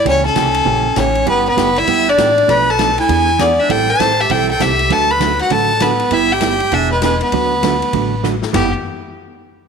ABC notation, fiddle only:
X:1
M:4/4
L:1/8
Q:"Swing" 1/4=198
K:G
V:1 name="Fiddle"
^c A4- A c2 | B B2 e2 d3 | b a2 _a3 d e | g a2 e g g e2 |
a b2 f a2 B2 | e g3 e B B B- | B6 z2 | G z6 z |]